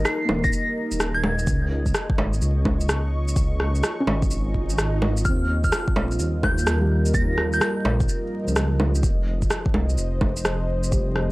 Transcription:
Already playing: felt piano F3 G3, analog synth pad D#4 A#4 D#5
0.05 synth bell C7, cross-stick, shaker
0.25 felt piano A#3, low bongo
0.29 detuned saw bass D#1
0.44 synth bell A#6, kick, shaker
0.53 shaker
0.92 detuned saw bass D#1, shaker
1.00 cross-stick, shaker
1.14 synth bell G#6
1.24 low bongo
1.39 shaker
1.47 detuned saw bass C#2, kick, shaker
1.66 analog synth pad F4 C#6
1.86 kick, shaker
1.95 cross-stick, shaker
2.10 kick
2.18 detuned saw bass G#1, low bongo
2.33 shaker
2.42 detuned saw bass C#2, shaker
2.65 kick, low bongo
2.81 shaker
2.89 cross-stick, shaker
3.28 shaker
3.36 detuned saw bass C#2, kick, shaker
3.60 cross-stick
3.75 shaker
3.84 cross-stick, shaker
4.00 felt piano C#4
4.07 detuned saw bass G#1, low bongo
4.22 kick, shaker
4.30 detuned saw bass G#1, swell, shaker
4.54 kick
4.70 shaker
4.78 cross-stick, shaker
5.02 low bongo
5.17 shaker
5.25 detuned saw bass D#2, analog synth pad G3, felt piano C4, synth bell F6, kick, shaker
5.64 synth bell F6, kick, shaker
5.69 analog synth pad A#4, cross-stick, shaker
5.88 kick
5.96 detuned saw bass A#1, low bongo
6.11 shaker
6.19 detuned saw bass D#2, shaker
6.43 synth bell G6, kick, low bongo
6.58 shaker
6.67 cross-stick, shaker
6.81 felt piano G3
7.06 shaker
7.14 detuned saw bass D#2, synth bell A#6, kick, shaker
7.38 cross-stick
7.53 synth bell G6, shaker
7.61 synth bell G6, cross-stick, shaker
7.85 detuned saw bass A#1, low bongo
8.00 kick, shaker
8.09 shaker
8.44 detuned saw bass C#2, felt piano F3, shaker
8.56 cross-stick, shaker
8.80 low bongo
8.95 shaker
9.03 detuned saw bass F1, analog synth pad F3, kick, shaker
9.17 analog synth pad C5
9.42 kick, shaker
9.51 cross-stick, shaker
9.66 kick
9.74 detuned saw bass C2, low bongo
9.89 shaker
9.98 detuned saw bass F1, shaker
10.21 kick, low bongo
10.37 shaker
10.45 cross-stick, shaker
10.84 shaker
10.91 detuned saw bass F1, felt piano G3, kick, shaker
11.16 cross-stick

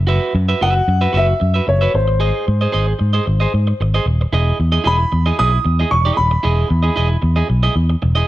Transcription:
Already playing: fingered electric bass F#1
0.07 clean electric guitar F#4 B4 E5
0.35 fingered electric bass F#2, muted clean electric guitar stroke
0.48 clean electric guitar F#4 B4 E5
0.61 fingered electric bass F#1, clean electric guitar F#4 B4 E5, grand piano F#5
0.75 muted clean electric guitar stroke
0.88 fingered electric bass F#2, muted clean electric guitar stroke
1.01 clean electric guitar F#4 B4 E5
1.13 fingered electric bass F#1, clean electric guitar F#4 B4 E5
1.17 grand piano E5
1.28 muted clean electric guitar stroke
1.40 fingered electric bass F#2, muted clean electric guitar stroke
1.54 clean electric guitar F#4 B4 E5
1.67 fingered electric bass F#1, grand piano C#5, muted clean electric guitar stroke
1.81 clean electric guitar F#4 B4 E5
1.94 fingered electric bass G#1, grand piano C5, muted clean electric guitar stroke
2.08 muted clean electric guitar stroke
2.20 clean electric guitar G#4 C5 D#5
2.47 fingered electric bass G#2, muted clean electric guitar stroke
2.61 clean electric guitar G#4 C5 D#5
2.72 fingered electric bass G#1, clean electric guitar G#4 C5 D#5
2.87 muted clean electric guitar stroke
2.99 fingered electric bass G#2, muted clean electric guitar stroke
3.13 clean electric guitar G#4 C5 D#5
3.26 fingered electric bass G#1, muted clean electric guitar stroke
3.40 clean electric guitar G#4 C5 D#5
3.54 fingered electric bass G#2, muted clean electric guitar stroke
3.67 muted clean electric guitar stroke
3.80 fingered electric bass G#1, muted clean electric guitar stroke
3.94 clean electric guitar G#4 C5 D#5
4.06 fingered electric bass D#1, muted clean electric guitar stroke
4.21 muted clean electric guitar stroke
4.33 fingered electric bass E1, clean electric guitar E4 G#4 D#5
4.60 fingered electric bass E2, muted clean electric guitar stroke
4.72 clean electric guitar E4 G#4 D#5
4.84 fingered electric bass E1, clean electric guitar E4 G#4 D#5, grand piano B5
4.99 muted clean electric guitar stroke
5.12 fingered electric bass E2, muted clean electric guitar stroke
5.26 clean electric guitar E4 G#4 D#5
5.39 fingered electric bass B1, clean electric guitar E4 G#4 D#5, grand piano D#6
5.52 muted clean electric guitar stroke
5.64 fingered electric bass E2, muted clean electric guitar stroke
5.80 clean electric guitar E4 G#4 D#5
5.91 fingered electric bass E1, grand piano C#6, muted clean electric guitar stroke
6.05 clean electric guitar E4 G#4 D#5
6.17 fingered electric bass D#1, grand piano B5, muted clean electric guitar stroke
6.31 muted clean electric guitar stroke
6.43 fingered electric bass E1, clean electric guitar E4 G#4 D#5
6.69 fingered electric bass E2, muted clean electric guitar stroke
6.83 clean electric guitar E4 G#4 D#5
6.96 fingered electric bass E1, clean electric guitar E4 G#4 D#5
7.09 muted clean electric guitar stroke
7.22 fingered electric bass E2, muted clean electric guitar stroke
7.36 clean electric guitar E4 G#4 D#5
7.48 fingered electric bass B1, muted clean electric guitar stroke
7.63 clean electric guitar E4 G#4 D#5
7.76 fingered electric bass E2, muted clean electric guitar stroke
7.90 muted clean electric guitar stroke
8.02 fingered electric bass E1, muted clean electric guitar stroke
8.15 clean electric guitar E4 G#4 D#5

